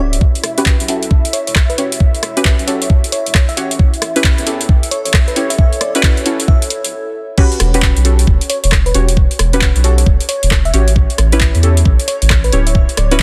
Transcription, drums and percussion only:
0.13 closed hi-hat
0.21 kick
0.35 closed hi-hat
0.44 cross-stick, open hi-hat
0.58 closed hi-hat
0.66 kick, clap
0.80 closed hi-hat
0.88 open hi-hat
1.03 closed hi-hat
1.11 kick
1.25 closed hi-hat
1.33 open hi-hat
1.47 closed hi-hat
1.56 kick, cross-stick, clap
1.70 closed hi-hat
1.78 open hi-hat
1.92 closed hi-hat
2.00 kick
2.15 closed hi-hat
2.23 cross-stick, open hi-hat
2.37 closed hi-hat
2.45 kick, clap
2.59 closed hi-hat
2.68 open hi-hat
2.82 closed hi-hat
2.90 kick
3.04 closed hi-hat
3.12 open hi-hat
3.26 closed hi-hat
3.35 kick, cross-stick, clap
3.49 closed hi-hat
3.57 open hi-hat
3.71 closed hi-hat
3.79 kick
3.94 closed hi-hat
4.02 cross-stick, open hi-hat
4.16 closed hi-hat
4.24 kick, clap
4.38 closed hi-hat
4.47 open hi-hat
4.61 closed hi-hat
4.69 kick
4.83 closed hi-hat
4.91 open hi-hat
5.05 closed hi-hat
5.14 kick, cross-stick, clap
5.28 closed hi-hat
5.36 open hi-hat
5.50 closed hi-hat
5.58 kick
5.73 closed hi-hat
5.81 cross-stick, open hi-hat
5.95 closed hi-hat
6.03 kick, clap
6.17 closed hi-hat
6.26 open hi-hat
6.40 closed hi-hat
6.48 kick
6.62 closed hi-hat
6.70 open hi-hat
6.84 closed hi-hat
7.38 kick, crash
7.52 closed hi-hat
7.60 cross-stick, open hi-hat
7.74 closed hi-hat
7.82 kick, clap
7.97 closed hi-hat
8.05 open hi-hat
8.19 closed hi-hat
8.27 kick
8.41 closed hi-hat
8.50 open hi-hat
8.64 closed hi-hat
8.72 kick, cross-stick, clap
8.86 closed hi-hat
8.94 open hi-hat
9.08 closed hi-hat
9.17 kick
9.31 closed hi-hat
9.39 cross-stick, open hi-hat
9.53 closed hi-hat
9.61 kick, clap
9.76 closed hi-hat
9.84 open hi-hat
9.98 closed hi-hat
10.06 kick
10.20 closed hi-hat
10.29 open hi-hat
10.43 closed hi-hat
10.51 kick, cross-stick, clap
10.65 closed hi-hat
10.74 open hi-hat
10.88 closed hi-hat
10.96 kick
11.10 closed hi-hat
11.18 cross-stick, open hi-hat
11.32 closed hi-hat
11.41 kick, clap
11.55 closed hi-hat
11.63 open hi-hat
11.77 closed hi-hat
11.85 kick
12.00 closed hi-hat
12.08 open hi-hat
12.22 closed hi-hat
12.30 kick, cross-stick, clap
12.44 closed hi-hat
12.53 open hi-hat
12.67 closed hi-hat
12.75 kick
12.89 closed hi-hat
12.97 cross-stick, open hi-hat
13.11 closed hi-hat

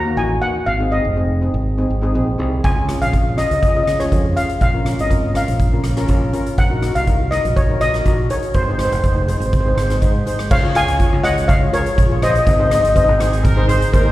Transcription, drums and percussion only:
2.64 kick, closed hi-hat
2.89 cross-stick, closed hi-hat
3.02 closed hi-hat
3.13 kick, closed hi-hat
3.38 cross-stick, closed hi-hat
3.51 closed hi-hat
3.63 kick, closed hi-hat
3.87 cross-stick, closed hi-hat
4.00 cross-stick, closed hi-hat
4.12 kick, closed hi-hat
4.37 closed hi-hat
4.49 closed hi-hat
4.61 kick, closed hi-hat
4.86 cross-stick, closed hi-hat
4.99 closed hi-hat
5.11 kick, closed hi-hat
5.35 cross-stick, closed hi-hat
5.48 closed hi-hat
5.59 kick, closed hi-hat
5.84 cross-stick, closed hi-hat
5.97 cross-stick, closed hi-hat
6.08 kick, closed hi-hat
6.33 closed hi-hat
6.46 closed hi-hat
6.58 kick, closed hi-hat
6.82 cross-stick, closed hi-hat
6.95 closed hi-hat
7.07 kick, closed hi-hat
7.32 cross-stick, closed hi-hat
7.45 closed hi-hat
7.57 kick, closed hi-hat
7.81 cross-stick, closed hi-hat
7.94 cross-stick, closed hi-hat
8.06 kick, closed hi-hat
8.30 closed hi-hat
8.43 closed hi-hat
8.54 kick, closed hi-hat
8.79 cross-stick, closed hi-hat
8.92 closed hi-hat
9.04 kick, closed hi-hat
9.28 closed hi-hat
9.41 closed hi-hat
9.53 kick, closed hi-hat
9.78 cross-stick, closed hi-hat
9.90 cross-stick, closed hi-hat
10.02 kick, closed hi-hat
10.27 closed hi-hat
10.39 cross-stick, closed hi-hat
10.51 kick, crash
10.75 cross-stick, closed hi-hat
10.88 closed hi-hat
11.00 kick, closed hi-hat
11.24 cross-stick, closed hi-hat
11.38 closed hi-hat
11.49 kick, closed hi-hat
11.73 closed hi-hat
11.86 closed hi-hat
11.98 kick, closed hi-hat
12.22 cross-stick, closed hi-hat
12.35 closed hi-hat
12.47 kick, closed hi-hat
12.71 cross-stick, closed hi-hat
12.85 closed hi-hat
12.96 kick, closed hi-hat
13.20 cross-stick, closed hi-hat
13.33 closed hi-hat
13.45 kick, closed hi-hat
13.69 closed hi-hat
13.82 closed hi-hat
13.94 kick, closed hi-hat

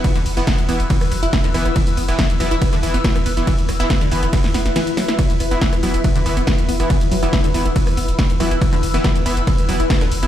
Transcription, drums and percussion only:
0.04 kick, closed hi-hat, ride
0.16 closed hi-hat
0.26 open hi-hat
0.37 closed hi-hat
0.47 kick, cross-stick, snare, closed hi-hat, ride
0.58 closed hi-hat
0.69 open hi-hat
0.80 closed hi-hat
0.90 kick, closed hi-hat, ride
1.01 cross-stick, open hi-hat
1.11 open hi-hat
1.23 closed hi-hat
1.33 kick, snare, closed hi-hat, ride
1.44 closed hi-hat
1.54 cross-stick, open hi-hat
1.66 closed hi-hat
1.76 kick, closed hi-hat, ride
1.87 closed hi-hat
1.97 open hi-hat
2.08 cross-stick, closed hi-hat
2.19 kick, snare, closed hi-hat, ride
2.30 closed hi-hat
2.40 open hi-hat
2.51 closed hi-hat
2.62 kick, cross-stick, closed hi-hat, ride
2.73 closed hi-hat
2.83 open hi-hat
2.94 closed hi-hat
3.04 kick, snare, closed hi-hat, ride
3.16 cross-stick, closed hi-hat
3.26 open hi-hat
3.37 closed hi-hat
3.47 kick, closed hi-hat, ride
3.58 closed hi-hat
3.69 cross-stick, open hi-hat
3.80 closed hi-hat
3.90 kick, snare, closed hi-hat, ride
4.01 closed hi-hat
4.11 open hi-hat
4.23 cross-stick, closed hi-hat
4.33 kick, snare, closed hi-hat, ride
4.44 snare, open hi-hat
4.54 snare, open hi-hat
4.66 snare, closed hi-hat
4.76 snare, closed hi-hat, ride
4.87 closed hi-hat
4.97 snare, open hi-hat
5.08 snare, closed hi-hat
5.19 kick, cross-stick, closed hi-hat, ride
5.30 closed hi-hat
5.40 open hi-hat
5.51 closed hi-hat
5.61 kick, snare, closed hi-hat, ride
5.73 cross-stick, closed hi-hat
5.83 open hi-hat
5.94 closed hi-hat
6.04 kick, closed hi-hat, ride
6.16 closed hi-hat
6.26 cross-stick, open hi-hat
6.37 closed hi-hat
6.47 kick, snare, closed hi-hat, ride
6.58 closed hi-hat
6.69 open hi-hat
6.80 cross-stick, closed hi-hat
6.90 kick, closed hi-hat, ride
7.01 closed hi-hat
7.11 open hi-hat
7.23 closed hi-hat
7.33 kick, cross-stick, snare, closed hi-hat, ride
7.44 closed hi-hat
7.54 open hi-hat
7.66 closed hi-hat
7.76 kick, closed hi-hat, ride
7.87 cross-stick, open hi-hat
7.97 open hi-hat
8.08 closed hi-hat
8.19 kick, snare, closed hi-hat, ride
8.30 closed hi-hat
8.40 cross-stick, open hi-hat
8.51 closed hi-hat
8.61 kick, closed hi-hat, ride
8.73 closed hi-hat
8.83 open hi-hat
8.94 cross-stick, closed hi-hat
9.04 kick, snare, closed hi-hat, ride
9.16 closed hi-hat
9.26 open hi-hat
9.37 closed hi-hat
9.47 kick, cross-stick, closed hi-hat, ride
9.58 closed hi-hat
9.69 open hi-hat
9.80 closed hi-hat
9.90 kick, snare, closed hi-hat, ride
10.01 cross-stick, closed hi-hat
10.11 open hi-hat
10.23 closed hi-hat

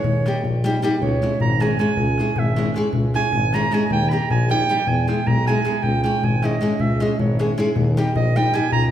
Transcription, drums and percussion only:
0.04 darbuka dum
0.15 darbuka tek
0.26 darbuka tek
0.45 darbuka dum
0.55 darbuka tek
0.64 darbuka tek
0.83 darbuka tek
1.02 darbuka dum
1.12 darbuka tek
1.23 darbuka tek
1.32 darbuka tek
1.40 darbuka dum
1.51 darbuka tek
1.61 darbuka tek
1.70 darbuka tek
1.79 darbuka tek
1.97 darbuka dum
2.08 darbuka tek
2.18 darbuka tek
2.36 darbuka dum
2.46 darbuka tek
2.56 darbuka tek
2.74 darbuka tek
2.93 darbuka dum
3.04 darbuka tek
3.14 darbuka tek
3.32 darbuka dum
3.42 darbuka tek
3.53 darbuka tek
3.71 darbuka tek
3.90 darbuka dum
4.00 darbuka tek
4.11 darbuka tek
4.30 darbuka dum
4.41 darbuka tek
4.51 darbuka tek
4.87 darbuka dum
4.98 darbuka tek
5.09 darbuka tek
5.27 darbuka dum
5.36 darbuka tek
5.46 darbuka tek
5.56 darbuka tek
5.65 darbuka tek
5.75 darbuka tek
5.83 darbuka dum
5.94 darbuka tek
6.04 darbuka tek
6.23 darbuka dum
6.34 darbuka tek
6.43 darbuka tek
6.61 darbuka tek
6.79 darbuka dum
6.90 darbuka tek
7.00 darbuka tek
7.19 darbuka dum
7.30 darbuka tek
7.40 darbuka tek
7.58 darbuka tek
7.76 darbuka dum
7.87 darbuka tek
7.97 darbuka tek
8.16 darbuka dum
8.26 darbuka tek
8.36 darbuka tek
8.54 darbuka tek
8.72 darbuka dum
8.83 darbuka tek

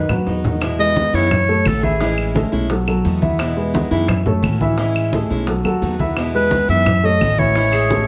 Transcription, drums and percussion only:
0.09 high bongo, low conga, claves
0.27 high bongo
0.44 low bongo, low conga
0.62 high bongo, high conga, claves
0.79 high bongo, high conga
0.96 high bongo, high conga
1.14 high bongo, high conga
1.31 high bongo, high conga, low conga, claves
1.49 high bongo, high conga
1.66 high bongo, low bongo, high conga, claves
1.83 high conga
2.00 high bongo, high conga
2.18 high bongo, high conga, claves
2.35 high bongo, high conga
2.70 high bongo, high conga
2.87 high bongo, high conga, claves
3.05 high bongo, low bongo, high conga
3.22 high conga
3.39 high bongo, high conga, claves
3.56 high bongo, high conga
3.74 high bongo, high conga
3.91 high bongo, high conga
4.08 high bongo, high conga, low conga, claves
4.26 high bongo, high conga, low conga
4.43 high bongo, low bongo, high conga, claves
4.61 high conga
4.78 high bongo, high conga
4.95 high bongo, high conga, claves
5.13 high bongo, high conga
5.30 high bongo
5.47 high bongo, high conga
5.65 high bongo, high conga, claves
5.82 high bongo, low bongo, high conga
5.99 high conga
6.17 high bongo, high conga, claves
6.34 high bongo, high conga
6.51 high bongo, high conga
6.69 high conga
6.86 high bongo, high conga, low conga, claves
7.04 high bongo, high conga
7.21 high bongo, low bongo, high conga, claves
7.38 high conga
7.55 high bongo, high conga
7.73 high bongo, high conga, claves
7.90 high bongo, high conga

